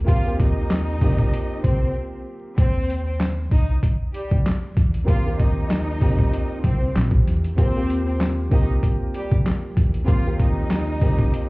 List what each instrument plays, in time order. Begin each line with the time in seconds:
Already playing: grand piano A#3 C4 F4 G4
0.04 grand piano A#3 C4 F4 G4, violin section F4
0.08 fingered electric bass D#2, violin section F5, kick, closed hi-hat
0.25 grand piano A#3 C4 F4 G4
0.40 violin section D#4 D#5, kick, closed hi-hat
0.70 snare, clap, closed hi-hat
1.01 fingered electric bass C2, grand piano A#3 C4 F4 G4, kick, open hi-hat
1.19 kick
1.34 closed hi-hat
1.63 fingered electric bass C2, violin section C4 C5, kick, closed hi-hat
2.58 fingered electric bass D#2, violin section C4 C5, kick, closed hi-hat
2.90 closed hi-hat
3.05 violin section C4 C5
3.20 snare, clap, closed hi-hat
3.51 fingered electric bass C2, violin section D#4 D#5, kick, open hi-hat
3.83 kick, closed hi-hat
4.14 violin section G3 G4, closed hi-hat
4.31 fingered electric bass C2, kick
4.46 snare, clap, closed hi-hat
4.77 fingered electric bass E2, kick, snare, closed hi-hat
4.94 closed hi-hat
5.04 grand piano A#3 C4 F4 G4, kick
5.08 fingered electric bass D#2, violin section F4 F5, closed hi-hat
5.25 grand piano A#3 C4 F4 G4
5.40 violin section D#4 D#5, kick, closed hi-hat
5.70 snare, clap, closed hi-hat
6.01 fingered electric bass C2, grand piano A#3 C4 F4 G4, kick, open hi-hat
6.19 kick
6.33 closed hi-hat
6.63 fingered electric bass C2, violin section C4 C5, kick, closed hi-hat
6.96 fingered electric bass A#1, snare, clap, closed hi-hat
7.11 kick
7.27 fingered electric bass E2, snare, closed hi-hat
7.44 closed hi-hat
7.56 fingered electric bass D#2, grand piano A#3 C4 F4 G4, violin section C4 C5, kick, closed hi-hat
7.75 grand piano A#3 C4 F4 G4
7.90 closed hi-hat
8.07 violin section C4 C5
8.20 snare, clap, closed hi-hat
8.50 fingered electric bass C2, grand piano A#3 C4 F4 G4, violin section D#4 D#5, kick, open hi-hat
8.83 kick, closed hi-hat
9.14 violin section G3 G4, closed hi-hat
9.32 fingered electric bass C2, kick
9.46 snare, clap, closed hi-hat
9.77 fingered electric bass E2, kick, snare, closed hi-hat
9.94 closed hi-hat
10.04 grand piano A#3 C4 F4 G4, violin section F4
10.08 fingered electric bass D#2, violin section F5, kick, closed hi-hat
10.25 grand piano A#3 C4 F4 G4
10.40 violin section D#4 D#5, kick, closed hi-hat
10.70 snare, clap, closed hi-hat
11.01 fingered electric bass C2, grand piano A#3 C4 F4 G4, kick, open hi-hat
11.19 kick
11.34 closed hi-hat